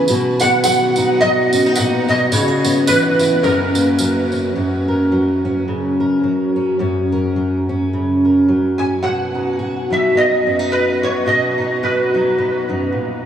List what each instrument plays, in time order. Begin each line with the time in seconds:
Already playing: steel-string acoustic guitar B3
0.08 steel-string acoustic guitar B2 F#4, tambourine
0.40 steel-string acoustic guitar B3, resonator guitar played with a steel bar F#5, tambourine
0.64 steel-string acoustic guitar F#3, resonator guitar played with a steel bar F#5, tambourine
0.96 steel-string acoustic guitar D#4, tambourine
1.21 steel-string acoustic guitar F#3, resonator guitar played with a steel bar D#5, tambourine
1.53 steel-string acoustic guitar C#4, tambourine
1.66 steel-string acoustic guitar D#4
1.75 steel-string acoustic guitar A#2, resonator guitar played with a steel bar F#5, tambourine
2.08 steel-string acoustic guitar B2, resonator guitar played with a steel bar D#5, tambourine
2.32 steel-string acoustic guitar C#3 F#4, resonator guitar played with a steel bar C#5, tambourine
2.48 steel-string acoustic guitar G#4
2.65 steel-string acoustic guitar B3, tambourine
2.87 steel-string acoustic guitar E3, resonator guitar played with a steel bar B4, tambourine
3.19 steel-string acoustic guitar E4, tambourine
3.42 steel-string acoustic guitar F#2 C#4, resonator guitar played with a steel bar A#4, tambourine
3.75 steel-string acoustic guitar A#3, tambourine
3.99 steel-string acoustic guitar F#3, tambourine
4.32 steel-string acoustic guitar C#4, tambourine
4.55 steel-string acoustic guitar F#2 C#4
4.88 steel-string acoustic guitar A#4
5.12 steel-string acoustic guitar F#3
5.45 steel-string acoustic guitar C#4
5.68 steel-string acoustic guitar C#3
6.00 steel-string acoustic guitar A#4
6.23 steel-string acoustic guitar F#3
6.56 steel-string acoustic guitar C#4
6.79 steel-string acoustic guitar F#2 C#4
7.12 steel-string acoustic guitar A#4
7.36 steel-string acoustic guitar F#3
7.69 steel-string acoustic guitar C#4
7.93 steel-string acoustic guitar C#3
8.25 steel-string acoustic guitar A#4
8.48 steel-string acoustic guitar F#3
8.78 steel-string acoustic guitar C#4, resonator guitar played with a steel bar G#5
9.03 steel-string acoustic guitar B2 F#4, resonator guitar played with a steel bar F#5
9.35 steel-string acoustic guitar D#4
9.59 steel-string acoustic guitar F#4
9.90 steel-string acoustic guitar F#3 D#4, resonator guitar played with a steel bar E5
10.15 steel-string acoustic guitar B3, resonator guitar played with a steel bar D#5
10.47 steel-string acoustic guitar F#2 C#4
10.59 steel-string acoustic guitar D#4
10.72 resonator guitar played with a steel bar B4
11.03 steel-string acoustic guitar F#4, resonator guitar played with a steel bar C#5
11.26 steel-string acoustic guitar B2 F#4, resonator guitar played with a steel bar D#5
11.58 steel-string acoustic guitar D#4
11.83 steel-string acoustic guitar F#4, resonator guitar played with a steel bar B4
12.14 steel-string acoustic guitar F#3 D#4
12.38 steel-string acoustic guitar B3
12.69 steel-string acoustic guitar F#2 D#4
12.92 steel-string acoustic guitar A#2